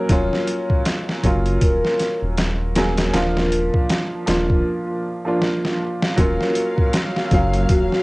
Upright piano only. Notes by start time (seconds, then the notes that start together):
Already playing: F#3 A#3 C#4 F#4 A#4
0.09 F#3 A#3 C#4 F4
1.23 F#3 A#3 C#4 F4
2.76 F#3 A#3 C#4 G#4
3.13 F3 A#3 D4 F4
4.26 F3 A#3 D4 F4
5.25 F3 A#3 D4 F4
6.16 F#3 A#3 C#4 F4
7.31 F#3 A#3 C#4 F5